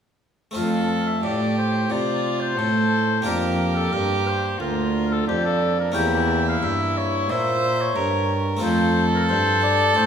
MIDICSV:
0, 0, Header, 1, 5, 480
1, 0, Start_track
1, 0, Key_signature, -1, "major"
1, 0, Tempo, 671141
1, 406, Time_signature, 4, 2, 24, 8
1, 7197, End_track
2, 0, Start_track
2, 0, Title_t, "Oboe"
2, 0, Program_c, 0, 68
2, 402, Note_on_c, 0, 77, 69
2, 765, Note_on_c, 0, 76, 73
2, 776, Note_off_c, 0, 77, 0
2, 889, Note_on_c, 0, 74, 75
2, 900, Note_off_c, 0, 76, 0
2, 1125, Note_off_c, 0, 74, 0
2, 1130, Note_on_c, 0, 72, 76
2, 1370, Note_on_c, 0, 74, 89
2, 1381, Note_off_c, 0, 72, 0
2, 1723, Note_on_c, 0, 72, 83
2, 1734, Note_off_c, 0, 74, 0
2, 2323, Note_off_c, 0, 72, 0
2, 2328, Note_on_c, 0, 70, 74
2, 2684, Note_off_c, 0, 70, 0
2, 2688, Note_on_c, 0, 69, 70
2, 2804, Note_on_c, 0, 70, 72
2, 2815, Note_off_c, 0, 69, 0
2, 3055, Note_on_c, 0, 72, 73
2, 3066, Note_off_c, 0, 70, 0
2, 3291, Note_off_c, 0, 72, 0
2, 3295, Note_on_c, 0, 70, 85
2, 3663, Note_on_c, 0, 69, 77
2, 3674, Note_off_c, 0, 70, 0
2, 3768, Note_off_c, 0, 69, 0
2, 3772, Note_on_c, 0, 67, 84
2, 3891, Note_off_c, 0, 67, 0
2, 3898, Note_on_c, 0, 69, 79
2, 4132, Note_off_c, 0, 69, 0
2, 4145, Note_on_c, 0, 70, 77
2, 4248, Note_off_c, 0, 70, 0
2, 4252, Note_on_c, 0, 79, 95
2, 4607, Note_off_c, 0, 79, 0
2, 4636, Note_on_c, 0, 77, 91
2, 4738, Note_off_c, 0, 77, 0
2, 4742, Note_on_c, 0, 76, 80
2, 4990, Note_on_c, 0, 73, 89
2, 5001, Note_off_c, 0, 76, 0
2, 5226, Note_on_c, 0, 76, 98
2, 5236, Note_off_c, 0, 73, 0
2, 5587, Note_on_c, 0, 73, 85
2, 5598, Note_off_c, 0, 76, 0
2, 5978, Note_off_c, 0, 73, 0
2, 6174, Note_on_c, 0, 72, 79
2, 6508, Note_off_c, 0, 72, 0
2, 6546, Note_on_c, 0, 70, 84
2, 6597, Note_off_c, 0, 70, 0
2, 6643, Note_on_c, 0, 72, 88
2, 6880, Note_off_c, 0, 72, 0
2, 6888, Note_on_c, 0, 74, 91
2, 7128, Note_on_c, 0, 72, 100
2, 7139, Note_off_c, 0, 74, 0
2, 7197, Note_off_c, 0, 72, 0
2, 7197, End_track
3, 0, Start_track
3, 0, Title_t, "Violin"
3, 0, Program_c, 1, 40
3, 402, Note_on_c, 1, 69, 75
3, 859, Note_off_c, 1, 69, 0
3, 888, Note_on_c, 1, 67, 65
3, 1364, Note_on_c, 1, 65, 68
3, 1374, Note_off_c, 1, 67, 0
3, 1845, Note_on_c, 1, 69, 70
3, 1855, Note_off_c, 1, 65, 0
3, 2313, Note_off_c, 1, 69, 0
3, 2318, Note_on_c, 1, 67, 82
3, 3288, Note_on_c, 1, 65, 65
3, 3299, Note_off_c, 1, 67, 0
3, 3772, Note_on_c, 1, 62, 69
3, 3783, Note_off_c, 1, 65, 0
3, 4246, Note_off_c, 1, 62, 0
3, 4250, Note_on_c, 1, 64, 86
3, 5217, Note_on_c, 1, 72, 89
3, 5228, Note_off_c, 1, 64, 0
3, 5690, Note_on_c, 1, 70, 69
3, 5701, Note_off_c, 1, 72, 0
3, 6169, Note_off_c, 1, 70, 0
3, 6175, Note_on_c, 1, 69, 100
3, 7197, Note_off_c, 1, 69, 0
3, 7197, End_track
4, 0, Start_track
4, 0, Title_t, "Harpsichord"
4, 0, Program_c, 2, 6
4, 366, Note_on_c, 2, 57, 45
4, 378, Note_on_c, 2, 60, 41
4, 391, Note_on_c, 2, 65, 46
4, 398, Note_on_c, 2, 41, 48
4, 857, Note_off_c, 2, 41, 0
4, 882, Note_on_c, 2, 45, 50
4, 1339, Note_off_c, 2, 45, 0
4, 1359, Note_on_c, 2, 48, 48
4, 1818, Note_off_c, 2, 48, 0
4, 1852, Note_on_c, 2, 45, 47
4, 2285, Note_off_c, 2, 57, 0
4, 2290, Note_off_c, 2, 60, 0
4, 2297, Note_off_c, 2, 65, 0
4, 2304, Note_off_c, 2, 45, 0
4, 2304, Note_on_c, 2, 58, 46
4, 2314, Note_on_c, 2, 62, 48
4, 2323, Note_on_c, 2, 67, 44
4, 2333, Note_on_c, 2, 41, 53
4, 2786, Note_off_c, 2, 41, 0
4, 2811, Note_on_c, 2, 43, 53
4, 3264, Note_off_c, 2, 43, 0
4, 3292, Note_on_c, 2, 38, 53
4, 3746, Note_off_c, 2, 38, 0
4, 3784, Note_on_c, 2, 41, 59
4, 4212, Note_off_c, 2, 58, 0
4, 4217, Note_off_c, 2, 62, 0
4, 4222, Note_off_c, 2, 67, 0
4, 4231, Note_off_c, 2, 41, 0
4, 4233, Note_on_c, 2, 58, 50
4, 4243, Note_on_c, 2, 61, 49
4, 4253, Note_on_c, 2, 67, 49
4, 4262, Note_on_c, 2, 40, 55
4, 4711, Note_off_c, 2, 40, 0
4, 4741, Note_on_c, 2, 43, 55
4, 5191, Note_off_c, 2, 43, 0
4, 5218, Note_on_c, 2, 46, 56
4, 5666, Note_off_c, 2, 46, 0
4, 5691, Note_on_c, 2, 43, 60
4, 6127, Note_on_c, 2, 57, 51
4, 6131, Note_off_c, 2, 58, 0
4, 6136, Note_off_c, 2, 61, 0
4, 6138, Note_on_c, 2, 60, 54
4, 6141, Note_off_c, 2, 43, 0
4, 6141, Note_off_c, 2, 67, 0
4, 6149, Note_on_c, 2, 65, 51
4, 6161, Note_on_c, 2, 41, 57
4, 6615, Note_off_c, 2, 57, 0
4, 6618, Note_off_c, 2, 41, 0
4, 6620, Note_off_c, 2, 60, 0
4, 6646, Note_on_c, 2, 43, 65
4, 7094, Note_off_c, 2, 43, 0
4, 7114, Note_on_c, 2, 45, 53
4, 7197, Note_off_c, 2, 45, 0
4, 7197, Note_off_c, 2, 65, 0
4, 7197, End_track
5, 0, Start_track
5, 0, Title_t, "Cello"
5, 0, Program_c, 3, 42
5, 408, Note_on_c, 3, 41, 67
5, 862, Note_off_c, 3, 41, 0
5, 890, Note_on_c, 3, 45, 64
5, 1362, Note_off_c, 3, 45, 0
5, 1371, Note_on_c, 3, 48, 60
5, 1847, Note_on_c, 3, 45, 67
5, 1857, Note_off_c, 3, 48, 0
5, 2327, Note_off_c, 3, 45, 0
5, 2331, Note_on_c, 3, 41, 76
5, 2804, Note_off_c, 3, 41, 0
5, 2813, Note_on_c, 3, 43, 65
5, 3284, Note_off_c, 3, 43, 0
5, 3294, Note_on_c, 3, 38, 66
5, 3766, Note_off_c, 3, 38, 0
5, 3772, Note_on_c, 3, 41, 74
5, 4244, Note_off_c, 3, 41, 0
5, 4255, Note_on_c, 3, 40, 78
5, 4727, Note_off_c, 3, 40, 0
5, 4736, Note_on_c, 3, 43, 61
5, 5219, Note_on_c, 3, 46, 67
5, 5230, Note_off_c, 3, 43, 0
5, 5695, Note_off_c, 3, 46, 0
5, 5699, Note_on_c, 3, 43, 73
5, 6164, Note_off_c, 3, 43, 0
5, 6174, Note_on_c, 3, 41, 83
5, 6656, Note_on_c, 3, 43, 77
5, 6666, Note_off_c, 3, 41, 0
5, 7125, Note_off_c, 3, 43, 0
5, 7129, Note_on_c, 3, 45, 81
5, 7197, Note_off_c, 3, 45, 0
5, 7197, End_track
0, 0, End_of_file